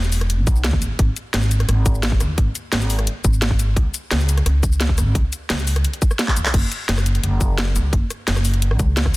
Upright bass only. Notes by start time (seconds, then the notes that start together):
Already playing: E1
0.47 B1
0.73 E2
0.82 G#1
0.99 G#1
1.34 G#1
1.69 G#1
2.20 D#2
2.38 G#1
2.72 G#1
3.24 G#1
3.76 C#2
4.11 C#2
4.46 C#2
4.98 G#1
5.15 C#2
5.50 C#2
6.37 E2
6.46 B1
6.54 F#1
6.89 F#1
7.23 F#1
7.76 C#2
7.93 F#1
8.28 F#1
8.79 C#2
9.06 F#2